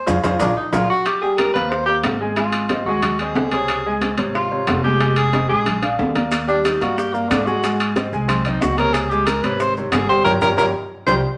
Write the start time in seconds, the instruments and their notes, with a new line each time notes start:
0.06 upright bass F2, grand piano F4 G#4 C5, low bongo, low conga, high timbale, maracas
0.23 upright bass F2, grand piano F4 G#4 C5, low bongo, low conga, high timbale, maracas
0.39 upright bass A#1, tenor saxophone D4, grand piano F4 G#4 A#4, low bongo, low conga, high timbale, maracas
0.56 tenor saxophone D#4
0.72 upright bass A#1, tenor saxophone F4, grand piano F4 G#4 A#4, low bongo, low conga, high timbale, maracas
0.90 tenor saxophone F#4
1.06 tenor saxophone G4, high bongo, high conga, high timbale
1.21 grand piano G3 G4 G5, tenor saxophone G#4, high conga
1.38 tenor saxophone A#4, high bongo, high conga, high timbale, low timbale
1.54 upright bass D#2, grand piano A#3 A#4 C5, tenor saxophone B4, high bongo, high conga, high timbale
1.70 tenor saxophone C5, high bongo, high conga
1.86 grand piano A#3 A#4 C5, tenor saxophone G4, high bongo, high conga
2.03 upright bass G#1, high bongo, low bongo, high conga, high timbale, low timbale
2.21 grand piano G#3 G#4 G#5, high bongo
2.36 grand piano G#3 G#4 G#5, tenor saxophone F4, high bongo, high conga, high timbale
2.52 high bongo, high conga, high timbale
2.69 grand piano C4 C5 D#5, high bongo, high conga, high timbale, low timbale
2.85 upright bass D#2, grand piano G#3 G#4 G#5, tenor saxophone F#4, high bongo, high conga
3.02 high bongo, high conga, low conga, high timbale
3.19 grand piano C4 C5 D#5, tenor saxophone G#4, high conga, high timbale
3.35 upright bass C#2, high bongo, low bongo, high conga, low timbale
3.51 grand piano C3 C5 C#5, tenor saxophone G#4, high bongo, high conga, high timbale
3.68 high bongo, high conga, high timbale
3.85 grand piano G#3 G#4 G#5, high conga
4.01 high bongo, high conga, high timbale, low timbale
4.18 upright bass G#1, grand piano C3 C5 C#5, high bongo, high conga, high timbale
4.35 tenor saxophone F4, high bongo, high conga
4.51 grand piano C3 C5 C#5, high bongo, high conga
4.67 upright bass F1, high bongo, low bongo, high conga, high timbale, low timbale
4.84 grand piano G#3 G#4 G#5, tenor saxophone G4, high bongo, high conga
5.00 grand piano G#3 G#4 G#5, high bongo, high conga, high timbale
5.16 tenor saxophone G#4, high bongo, high conga, high timbale
5.33 grand piano C4 C5 D#5, high bongo, high conga, high timbale, low timbale
5.49 upright bass A#1, grand piano G#3 G#4 G#5, tenor saxophone G#4, high conga
5.66 high bongo, high conga, low conga, high timbale
5.82 grand piano D4 D5 F5, low bongo, high conga, high timbale
5.99 upright bass D#2, low bongo, high conga, low timbale
6.15 grand piano A#3 A#4 D5, low bongo, high conga, high timbale
6.31 high bongo, high conga, high timbale, maracas
6.47 grand piano G3 G4 G5, tenor saxophone D4, maracas
6.65 tenor saxophone D#4, high bongo, high conga, high timbale, low timbale, maracas
6.81 upright bass G2, grand piano A#3 A#4 D5, tenor saxophone F#4, high bongo, high conga, high timbale, maracas
6.97 tenor saxophone G4, high bongo, high conga, maracas
7.14 tenor saxophone A#3, grand piano A#3 A#4 D5, high bongo, high conga, maracas
7.29 upright bass G#2, tenor saxophone D4, high bongo, low bongo, high conga, high timbale, low timbale, maracas
7.46 grand piano G#3 G#4 G#5, tenor saxophone F#4, high bongo, high conga, maracas
7.63 grand piano G#3 G#4 G#5, high bongo, high conga, high timbale, maracas
7.80 high bongo, high conga, high timbale, maracas
7.96 grand piano C4 C5 D#5, high bongo, high conga, high timbale, low timbale, maracas
8.12 upright bass C2, grand piano G#3 G#4 G#5, high bongo, high conga, maracas
8.28 tenor saxophone C4, high bongo, high conga, low conga, high timbale, maracas
8.45 grand piano C4 C5 D#5, tenor saxophone D#4, high conga, low conga, high timbale, maracas
8.62 upright bass C#2, tenor saxophone F#4, high bongo, low bongo, high conga, low timbale, maracas
8.78 grand piano C3 C5 C#5, tenor saxophone A#4, high bongo, high conga, high timbale, maracas
8.93 tenor saxophone G#4, high bongo, high conga, high timbale, maracas
9.09 grand piano G#3 G#4 G#5, tenor saxophone G4, high conga, maracas
9.27 tenor saxophone A#4, high bongo, high conga, high timbale, low timbale, maracas
9.43 upright bass G#1, grand piano C3 C5 C#5, tenor saxophone B4, high bongo, high conga, high timbale, maracas
9.60 tenor saxophone C5, high bongo, high conga, maracas
9.76 grand piano C3 C5 C#5, tenor saxophone D#4, high bongo, high conga, maracas
9.92 upright bass G1, tenor saxophone G#4, high bongo, low bongo, high conga, high timbale, low timbale, maracas
10.09 grand piano G3 G4 G5, tenor saxophone C5, high bongo, high conga, maracas
10.24 upright bass G1, grand piano G4 A#4 C#5, tenor saxophone A#4, low bongo, low conga, high timbale, maracas
10.41 upright bass G1, grand piano G4 A#4 C#5, tenor saxophone A#4, low bongo, low conga, high timbale, maracas
10.57 upright bass G1, grand piano G4 A#4 C#5, tenor saxophone A#4, low bongo, low conga, high timbale, maracas
11.07 upright bass C2, grand piano G4 A#4 C5, tenor saxophone C5, low bongo, low conga, high timbale, maracas